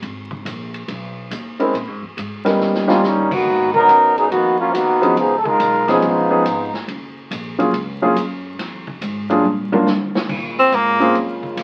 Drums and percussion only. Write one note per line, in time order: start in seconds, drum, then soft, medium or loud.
0.02 kick soft
0.02 ride medium
0.31 kick medium
0.46 kick soft
0.46 hi-hat pedal medium
0.46 ride medium
0.74 ride soft
0.88 kick soft
0.88 ride medium
1.31 kick soft
1.31 hi-hat pedal medium
1.31 ride medium
1.60 ride soft
1.74 kick soft
1.74 ride medium
2.17 kick soft
2.17 hi-hat pedal medium
2.17 ride medium
2.46 snare medium
2.46 ride medium
2.60 snare soft
2.75 snare medium
2.89 snare medium
3.03 snare medium
3.03 hi-hat pedal medium
3.31 kick medium
3.31 crash medium
3.46 kick soft
3.74 kick medium
3.89 kick soft
3.89 hi-hat pedal medium
3.89 ride medium
4.18 ride soft
4.32 kick soft
4.32 ride medium
4.74 kick soft
4.74 hi-hat pedal medium
4.74 ride medium
5.03 ride soft
5.17 kick soft
5.17 ride medium
5.46 kick medium
5.60 kick soft
5.60 hi-hat pedal medium
5.60 ride medium
5.88 snare soft
5.88 ride soft
6.02 kick soft
6.02 ride medium
6.45 kick soft
6.45 hi-hat pedal medium
6.45 ride medium
6.74 snare soft
6.88 kick soft
6.88 ride medium
7.31 kick soft
7.31 hi-hat pedal medium
7.31 ride medium
7.60 ride soft
7.74 kick soft
7.74 ride medium
8.16 kick soft
8.16 hi-hat pedal medium
8.16 ride medium
8.59 kick soft
8.59 snare soft
8.59 ride medium
8.87 kick medium
9.02 kick soft
9.02 hi-hat pedal medium
9.02 ride medium
9.30 ride soft
9.44 high tom soft
9.73 high tom medium
9.87 snare medium
9.87 hi-hat pedal medium
10.15 snare loud
10.29 kick medium
10.29 crash medium
10.72 kick soft
10.72 hi-hat pedal medium
10.72 ride medium
11.01 ride soft
11.15 kick soft
11.15 ride medium
11.43 kick soft
11.57 kick soft
11.57 hi-hat pedal medium
11.57 ride medium